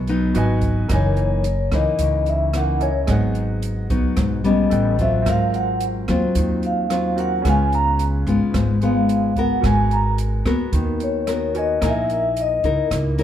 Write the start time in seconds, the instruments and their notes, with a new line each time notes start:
Already playing: upright bass B1, nylon-string guitar B2, grand piano F#4 A#4 D#5 G#5
0.07 nylon-string guitar F#3 B3 D#4, closed hi-hat
0.34 upright bass G#1, grand piano F#4 B4 D#5 G#5, closed hi-hat
0.61 kick, closed hi-hat
0.88 upright bass F#1, nylon-string guitar F#2 E3 A#3 D#4, grand piano A#4 D#5, kick, cross-stick, closed hi-hat
0.93 vibraphone C#5, grand piano G#5
1.17 closed hi-hat
1.44 closed hi-hat
1.72 upright bass C#2, nylon-string guitar E3 A#3 D#4, vibraphone D#5, kick, cross-stick, closed hi-hat
1.99 upright bass C#2, nylon-string guitar C#3, kick, closed hi-hat
2.26 vibraphone E5, closed hi-hat
2.53 nylon-string guitar E3 A#3 D#4, vibraphone F#5, cross-stick, closed hi-hat
2.79 grand piano E4 A#4 D#5 G#5, vibraphone C#5, closed hi-hat
3.07 upright bass G#1, nylon-string guitar G#2 F#3 B3, grand piano G#4 D#5 F#5, kick, cross-stick, closed hi-hat
3.11 nylon-string guitar D#4
3.35 closed hi-hat
3.62 closed hi-hat
3.90 upright bass B1, nylon-string guitar F#3 B3 D#4, kick, closed hi-hat
4.17 upright bass B1, nylon-string guitar G#2, kick, cross-stick, closed hi-hat
4.44 nylon-string guitar G3 B3 C#4, vibraphone D#5, closed hi-hat
4.70 upright bass A1, grand piano A4 B4 G5, closed hi-hat
4.99 nylon-string guitar F#3 C4 F4, vibraphone E5, kick, closed hi-hat
5.22 grand piano C4
5.26 upright bass G#1, nylon-string guitar G#2, grand piano A#4 F5, kick, cross-stick, closed hi-hat
5.31 vibraphone F5
5.54 vibraphone F#5, closed hi-hat
5.80 closed hi-hat
6.08 upright bass D#2, nylon-string guitar F#3 C4 F4, kick, cross-stick, closed hi-hat
6.35 upright bass D#2, nylon-string guitar D#3, kick, closed hi-hat
6.63 vibraphone F5, closed hi-hat
6.90 nylon-string guitar F#3 C4 F4, cross-stick, closed hi-hat
7.15 grand piano C4 F#4 A#4 F5, closed hi-hat
7.20 vibraphone F#5
7.42 upright bass C#2, nylon-string guitar C#3 G#3 B3 F4, grand piano C#4 G#4, kick, cross-stick, closed hi-hat
7.46 grand piano B4 F5, vibraphone G#5
7.72 vibraphone A#5, closed hi-hat
7.99 closed hi-hat
8.27 upright bass G#1, nylon-string guitar G#3 B3 F4, kick, closed hi-hat
8.54 upright bass G#1, nylon-string guitar G#2, kick, cross-stick, closed hi-hat
8.82 nylon-string guitar G#3 B3 F4, vibraphone F5, closed hi-hat
9.09 closed hi-hat
9.36 nylon-string guitar B3 F#4 A#4, vibraphone F#5, kick, closed hi-hat
9.61 upright bass G#1, grand piano F#4 A#4, kick, cross-stick, closed hi-hat
9.65 nylon-string guitar G#3, grand piano G#5, vibraphone G#5
9.91 vibraphone A#5, closed hi-hat
10.18 closed hi-hat
10.45 upright bass D#2, nylon-string guitar B3 F#4 A#4, kick, cross-stick, closed hi-hat
10.73 upright bass D#2, nylon-string guitar D#3, kick, closed hi-hat
11.00 vibraphone C#5, closed hi-hat
11.27 nylon-string guitar B3 F#4 A#4, cross-stick, closed hi-hat
11.54 grand piano F#4 A#4 B4 G#5, closed hi-hat
11.59 vibraphone D#5
11.81 upright bass A#1, nylon-string guitar A#3 D#4 E4 A#4, grand piano A#4 D#5, kick, cross-stick, closed hi-hat
11.85 vibraphone E5, grand piano G#5
12.10 vibraphone E5, closed hi-hat
12.37 closed hi-hat
12.41 vibraphone D#5
12.64 upright bass C#2, nylon-string guitar D#4 E4 A#4, kick, closed hi-hat
12.90 upright bass C#2, nylon-string guitar A#3, kick, cross-stick, closed hi-hat
13.18 nylon-string guitar D#4 E4 A#4, closed hi-hat